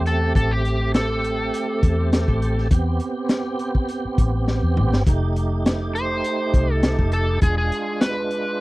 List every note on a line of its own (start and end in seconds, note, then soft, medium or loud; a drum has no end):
0.00 0.32 E2 medium
0.00 2.67 A3 medium
0.00 2.68 C4 medium
0.00 2.68 G4 medium
0.06 0.35 A4 medium
0.06 snare soft
0.06 closed hi-hat medium
0.35 1.49 A1 medium
0.35 0.51 A4 medium
0.35 kick loud
0.35 closed hi-hat medium
0.51 0.93 G4 medium
0.65 closed hi-hat medium
0.94 2.68 A4 medium
0.94 snare loud
0.94 closed hi-hat medium
1.24 closed hi-hat medium
1.54 closed hi-hat medium
1.83 2.24 E2 medium
1.83 kick medium
1.83 closed hi-hat medium
2.13 snare loud
2.13 closed hi-hat medium
2.28 2.68 A1 medium
2.28 kick medium
2.42 closed hi-hat medium
2.58 snare soft
2.70 2.98 E2 medium
2.70 5.03 B3 medium
2.70 5.03 C4 medium
2.70 5.03 G4 medium
2.70 kick loud
2.70 closed hi-hat medium
3.00 closed hi-hat medium
3.29 snare loud
3.29 closed hi-hat medium
3.59 closed hi-hat medium
3.75 kick medium
3.88 closed hi-hat medium
4.05 muted fingered electric bass stroke soft
4.18 4.60 A1 medium
4.18 kick medium
4.18 closed hi-hat medium
4.48 snare medium
4.63 4.76 E2 medium
4.77 4.92 A1 medium
4.77 mid tom medium
4.93 5.06 G1 medium
4.93 snare medium
5.06 6.21 F1 medium
5.06 7.38 A3 medium
5.06 7.39 D#4 medium
5.06 7.39 G4 medium
5.06 kick loud
5.06 closed hi-hat medium
5.36 closed hi-hat medium
5.66 snare loud
5.66 closed hi-hat medium
5.95 6.73 C5 medium
5.95 closed hi-hat medium
6.24 closed hi-hat medium
6.54 6.95 C2 medium
6.54 kick medium
6.54 closed hi-hat medium
6.73 7.09 A4 medium
6.83 snare loud
6.83 closed hi-hat medium
6.99 7.39 F1 medium
6.99 kick medium
7.12 7.42 A4 medium
7.12 closed hi-hat medium
7.41 7.69 E1 medium
7.41 8.61 G#3 medium
7.41 8.61 D4 medium
7.41 8.61 F4 medium
7.41 7.57 G#4 medium
7.41 kick loud
7.41 closed hi-hat medium
7.58 8.00 G#4 medium
7.72 closed hi-hat medium
8.01 8.61 B4 medium
8.01 snare loud
8.01 closed hi-hat medium
8.31 closed hi-hat medium